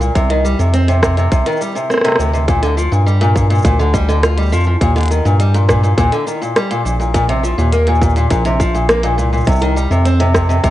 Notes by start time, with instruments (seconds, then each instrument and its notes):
Already playing: analog synth bass C2
0.01 steel-string acoustic guitar A#2, shaker
0.15 analog synth bass C2, steel-string acoustic guitar C3, kick, closed hi-hat, shaker
0.30 steel-string acoustic guitar D#3, closed hi-hat
0.44 steel-string acoustic guitar G3, shaker
0.59 analog synth bass F2, steel-string acoustic guitar C3, shaker
0.73 steel-string acoustic guitar C4, closed hi-hat, shaker
0.88 steel-string acoustic guitar C3, closed hi-hat, shaker
1.03 steel-string acoustic guitar C3, kick, cross-stick, shaker
1.17 steel-string acoustic guitar C3, closed hi-hat, shaker
1.32 analog synth bass C2, steel-string acoustic guitar C3, kick, closed hi-hat, shaker
1.46 steel-string acoustic guitar D#3, closed hi-hat, shaker
1.52 shaker
1.57 shaker
1.61 steel-string acoustic guitar G3, shaker
1.71 steel-string acoustic guitar C3, shaker
1.76 shaker
1.90 steel-string acoustic guitar C4, cross-stick, shaker
1.94 cross-stick
1.98 cross-stick
2.02 steel-string acoustic guitar C3, cross-stick
2.05 cross-stick, closed hi-hat, shaker
2.09 cross-stick
2.12 cross-stick
2.16 analog synth bass D2, steel-string acoustic guitar C3, cross-stick
2.20 shaker
2.34 steel-string acoustic guitar C3, shaker
2.48 steel-string acoustic guitar A#2, kick, closed hi-hat, shaker
2.63 steel-string acoustic guitar D3, closed hi-hat, shaker
2.77 steel-string acoustic guitar F3, shaker
2.92 analog synth bass G2, steel-string acoustic guitar A#2, shaker
3.07 steel-string acoustic guitar G3, shaker
3.21 steel-string acoustic guitar A#2, closed hi-hat, shaker
3.36 steel-string acoustic guitar A#2, kick, shaker
3.50 steel-string acoustic guitar A#2, closed hi-hat, shaker
3.55 shaker
3.58 shaker
3.62 analog synth bass D2, steel-string acoustic guitar A#2, kick, closed hi-hat, shaker
3.66 shaker
3.79 steel-string acoustic guitar D3, shaker
3.94 steel-string acoustic guitar G3, kick, shaker
4.09 steel-string acoustic guitar D3, shaker
4.23 steel-string acoustic guitar F4, cross-stick, closed hi-hat, shaker
4.38 steel-string acoustic guitar G3, closed hi-hat, shaker
4.42 shaker
4.45 shaker
4.49 analog synth bass F2, steel-string acoustic guitar F3, shaker
4.53 shaker
4.57 shaker
4.60 shaker
4.64 steel-string acoustic guitar F3, shaker
4.81 analog synth bass D#2, steel-string acoustic guitar A#2, kick, closed hi-hat, shaker
4.96 steel-string acoustic guitar D3, closed hi-hat, shaker
4.98 closed hi-hat
5.01 closed hi-hat
5.03 closed hi-hat
5.06 closed hi-hat
5.08 steel-string acoustic guitar D#3, closed hi-hat, shaker
5.25 analog synth bass G2, steel-string acoustic guitar A#2, shaker
5.40 steel-string acoustic guitar G3, closed hi-hat, shaker
5.54 steel-string acoustic guitar A#2, closed hi-hat, shaker
5.69 steel-string acoustic guitar A#2, kick, cross-stick, shaker
5.83 steel-string acoustic guitar A#2, shaker
5.98 analog synth bass D#2, steel-string acoustic guitar A#2, kick, closed hi-hat, shaker
6.12 steel-string acoustic guitar D3, closed hi-hat, shaker
6.27 steel-string acoustic guitar D#3, shaker
6.42 steel-string acoustic guitar A#2, shaker
6.56 steel-string acoustic guitar G3, cross-stick, closed hi-hat, shaker
6.71 steel-string acoustic guitar A#2, closed hi-hat, shaker
6.85 analog synth bass A#1, steel-string acoustic guitar A#2, shaker
7.00 steel-string acoustic guitar A#2, shaker
7.14 steel-string acoustic guitar A#2, kick, closed hi-hat, shaker
7.29 steel-string acoustic guitar C3, closed hi-hat, shaker
7.43 steel-string acoustic guitar F3, shaker
7.58 analog synth bass D#2, steel-string acoustic guitar A#2, shaker
7.73 steel-string acoustic guitar A#3, closed hi-hat, shaker
7.87 steel-string acoustic guitar A#2, closed hi-hat, shaker
7.95 shaker
8.02 steel-string acoustic guitar A#2, kick, shaker
8.10 shaker
8.16 steel-string acoustic guitar A#2, closed hi-hat, shaker
8.31 analog synth bass A#1, steel-string acoustic guitar A#2, kick, closed hi-hat, shaker
8.45 steel-string acoustic guitar C3, closed hi-hat, shaker
8.60 steel-string acoustic guitar F3, kick, shaker
8.74 steel-string acoustic guitar A#2, shaker
8.89 steel-string acoustic guitar A#3, cross-stick, closed hi-hat, shaker
9.03 steel-string acoustic guitar A#2, closed hi-hat, shaker
9.18 analog synth bass C2, steel-string acoustic guitar A#2, shaker
9.33 steel-string acoustic guitar A#2, shaker
9.37 shaker
9.41 shaker
9.44 analog synth bass C2, steel-string acoustic guitar C3, kick, closed hi-hat, shaker
9.48 shaker
9.52 shaker
9.55 shaker
9.59 steel-string acoustic guitar D#3, closed hi-hat, shaker
9.76 steel-string acoustic guitar G3, shaker
9.91 analog synth bass F2, steel-string acoustic guitar C3, shaker
10.05 steel-string acoustic guitar C4, closed hi-hat, shaker
10.20 steel-string acoustic guitar C3, closed hi-hat, shaker
10.34 steel-string acoustic guitar C3, kick, cross-stick, shaker
10.49 steel-string acoustic guitar C3, shaker
10.63 analog synth bass C2, steel-string acoustic guitar C3, kick, closed hi-hat, shaker